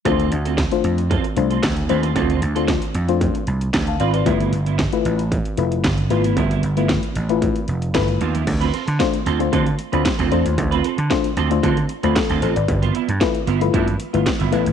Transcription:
<<
  \new Staff \with { instrumentName = "FM electric piano" } { \time 4/4 \key d \dorian \tempo 4 = 114 << { r1 | r2. r16 <f'' a''>16 <d'' f''>16 <b' d''>16~ | <b' d''>16 r2. r8. | r1 |
r1 | r2. <f' a'>8 <a' c''>16 <b' d''>16~ | <b' d''>16 r2. r8. | } \\ { <a d' f' c''>8 r8. <a d' f' c''>8 r8. <a d' f' c''>8 r8 <a d' f' c''>8 | r8. <a d' f' c''>8 r8 <a d' f' c''>8 r4. r16 | <a e' f' b'>8 r8. <a e' f' b'>8 r8. <a e' f' b'>8 r8 <a e' f' b'>8 | r8. <a e' f' b'>8 r8 <a e' f' b'>8 r8. <a e' f' b'>8 r8 |
r4 <a d' f' c''>16 r8 <a d' f' c''>8 r8 <a d' f' c''>16 r8 <a d' f' c''>8~ | <a d' f' c''>16 r8. <a d' f' c''>16 r8 <a d' f' c''>8 r8 <a d' f' c''>16 r4 | r4 <a e' f' b'>16 r8 <a e' f' b'>8 r8 <a e' f' b'>16 r8 <a e' f' b'>8 | } >> }
  \new Staff \with { instrumentName = "Clean electric guitar" } { \time 4/4 \key d \dorian <c' f' a'>8 r16 <c' f' a'>16 r4 <c' f' a'>16 r8 <c' f' a'>16 r8 <c' f' b'>16 <c' f' a'>16 | <c' f' a'>8 r16 <c' f' a'>16 r2 r8 <c' f' b'>16 <c' f' a'>16 | <f b e'>8 r16 <f b e'>16 r2 r8 <f b f'>16 <f b e'>16 | <f b e'>8 r16 <f b e'>16 r2 r8 <f b f'>16 <f b e'>16 |
r16 <c' f' b'>16 <c' f' a'>16 r8. <c' f' a'>16 r16 <c' f' a'>16 r8 <c' f' b'>16 r16 <c' f' a'>16 <c' f' a'>16 r16 | r16 <c' f' b'>16 <c' f' a'>16 r8. <c' f' a'>16 r16 <c' f' a'>16 r8 <c' f' b'>16 r16 <c' f' a'>16 <c' f' a'>16 r16 | r16 <f b f'>16 <f b e'>16 r8. <f b e'>16 r16 <f b e'>16 r8 <f b f'>16 r16 <f b e'>16 <f b e'>16 r16 | }
  \new Staff \with { instrumentName = "Slap bass" } { \clef bass \time 4/4 \key d \dorian d,8 d,8. r16 f,8. r16 c,8 d,8 ees,8 | d,8 d,8. r16 f,8. r16 c,8 d,8 gis,,8 | g,,8 g,,8. r16 a,,8. r16 f,,8 g,,8 gis,,8 | g,,8 g,,8. r16 a,,8. r16 f,,8 g,,8 ees,8 |
d,8 r16 d16 r8 d,8 d8 r16 d,16 r16 d,16 e,16 ees,16 | d,8 r16 d16 r8 d,8 d8 r16 d,16 r16 d,16 a,,16 gis,,16 | g,,8 r16 g,16 r8 g,,8 g,8 r16 g,,16 r16 g,,16 a,,16 gis,,16 | }
  \new DrumStaff \with { instrumentName = "Drums" } \drummode { \time 4/4 <hh bd>16 hh16 hh16 hh16 <hc hh bd sn>16 hh16 hh16 hh16 <hh bd>16 hh16 hh16 hh16 <hc hh bd sn>16 hh16 hh16 hh16 | <hh bd>16 hh16 hh16 hh16 <hc hh bd sn>16 hh16 hh16 hh16 <hh bd>16 hh16 hh16 hh16 <hc hh bd sn>16 hh16 hh16 hh16 | <hh bd>16 hh16 hh16 hh16 <hc hh bd sn>16 hh16 hh16 hh16 <hh bd>16 hh16 hh16 hh16 <hc hh bd sn>16 hh16 hh16 hh16 | <hh bd>16 hh16 hh16 hh16 <hc hh bd sn>16 hh16 hh16 hh16 <hh bd>16 hh16 hh16 hh16 <hc hh bd sn>16 hh16 hh16 hh16 |
<cymc hh bd>16 hh16 hh16 hh16 <hc hh bd sn>16 hh16 hh16 hh16 <hh bd>16 hh16 hh16 hh16 <hc hh bd sn>16 hh16 hh16 hh16 | <hh bd>16 hh16 hh16 hh16 <hc hh bd sn>16 hh16 hh16 hh16 <hh bd>16 hh16 hh16 hh16 <hc hh bd sn>16 hh16 hh16 hh16 | <hh bd>16 hh16 hh16 hh16 <hc hh bd sn>16 hh16 hh16 hh16 <hh bd>16 hh16 hh16 hh16 <hc hh bd sn>16 hh16 hh16 hh16 | }
>>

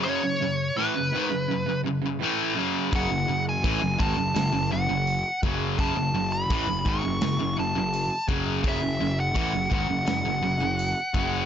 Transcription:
<<
  \new Staff \with { instrumentName = "Lead electric guitar" } { \time 4/4 \key fis \minor \tempo 4 = 84 cis''4 b'4. r4. | fis''8. gis''8. a''4 fis''4 r8 | a''8. b''8. cis'''4 a''4 r8 | e''8. fis''8. fis''2~ fis''8 | }
  \new Staff \with { instrumentName = "Distorted electric guitar" } { \clef bass \time 4/4 \key fis \minor <fis, cis>16 <fis, cis>16 <fis, cis>8 <a, e>16 <fis, cis>16 <gis, dis>16 <fis, cis>16 <fis, cis>16 <fis, cis>16 <fis, cis>16 <fis, cis>16 <a, e a>8 <fis, cis fis>8 | <fis, cis>16 <fis, cis>16 <fis, cis>8 <a, e>16 <fis, cis>16 <gis, dis>16 <fis, cis>16 <fis, cis>16 <fis, cis>16 <fis, cis>16 <fis, cis>8 r16 <fis, cis fis>8 | <fis, cis>16 <fis, cis>16 <fis, cis>8 <a, e>16 <fis, cis>16 <gis, dis>16 <fis, cis>16 <fis, cis>16 <fis, cis>16 <fis, cis>16 <fis, cis>8 r16 <fis, cis fis>8 | <fis, cis>16 <fis, cis>16 <fis, cis>8 <a, e>16 <fis, cis>16 <gis, dis>16 <fis, cis>16 <fis, cis>16 <fis, cis>16 <fis, cis>16 <fis, cis>8 r16 <fis, cis fis>8 | }
  \new Staff \with { instrumentName = "Distorted electric guitar" } { \clef bass \time 4/4 \key fis \minor <fis, cis>16 <fis, cis>16 <fis, cis>8 <a, e>16 <fis, cis>16 <gis, dis>16 <fis, cis>16 <fis, cis>16 <fis, cis>16 <fis, cis>16 <fis, cis>16 <a, e a>8 <fis, cis fis>8 | <fis, cis>16 <fis, cis>16 <fis, cis>8 <a, e>16 <fis, cis>16 <gis, dis>16 <fis, cis>16 <fis, cis>16 <fis, cis>16 <fis, cis>16 <fis, cis>8 r16 <fis, cis fis>8 | <fis, cis>16 <fis, cis>16 <fis, cis>8 <a, e>16 <fis, cis>16 <gis, dis>16 <fis, cis>16 <fis, cis>16 <fis, cis>16 <fis, cis>16 <fis, cis>8 r16 <fis, cis fis>8 | <fis, cis>16 <fis, cis>16 <fis, cis>8 <a, e>16 <fis, cis>16 <gis, dis>16 <fis, cis>16 <fis, cis>16 <fis, cis>16 <fis, cis>16 <fis, cis>8 r16 <fis, cis fis>8 | }
  \new Staff \with { instrumentName = "Picked electric bass" } { \clef bass \time 4/4 \key fis \minor r1 | fis,,16 fis,,16 fis,,8 a,,16 fis,,16 gis,,16 fis,,16 fis,,16 fis,,16 fis,,16 fis,,8 r16 fis,,8 | fis,,16 fis,,16 fis,,8 a,,16 fis,,16 gis,,16 fis,,16 fis,,16 fis,,16 fis,,16 fis,,8 r16 fis,,8 | fis,,16 fis,,16 fis,,8 a,,16 fis,,16 gis,,16 fis,,16 fis,,16 fis,,16 fis,,16 fis,,8 r16 fis,,8 | }
  \new DrumStaff \with { instrumentName = "Drums" } \drummode { \time 4/4 r4 r4 r4 r4 | <hho bd>4 <hho bd>8 bd8 <hho sn>4 hho8 bd8 | <hho bd>4 <hho bd>8 bd8 <hho sn>4 hho8 bd8 | <hho bd>4 <hho bd>8 bd8 <hho sn>4 hho8 bd8 | }
>>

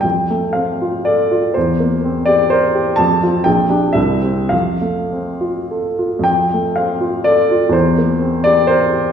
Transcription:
\new Staff \with { instrumentName = "Upright piano" } { \time 3/4 \key f \major \tempo 4 = 123 << { g''4 f''4 d''4 | c''4. d''8 c''4 | a''4 g''4 e''4 | f''2 r4 |
g''4 f''4 d''4 | c''4. d''8 c''4 | } \\ { f,8 a8 c'8 f'8 a'8 f'8 | e,8 bes8 c'8 g'8 bes'8 g'8 | f,8 <c' f'>8 bes,,8 <d' g'>8 c,8 <c' g'>8 | f,8 a8 c'8 f'8 a'8 f'8 |
f,8 a8 c'8 f'8 a'8 f'8 | e,8 bes8 c'8 g'8 bes'8 g'8 | } >> }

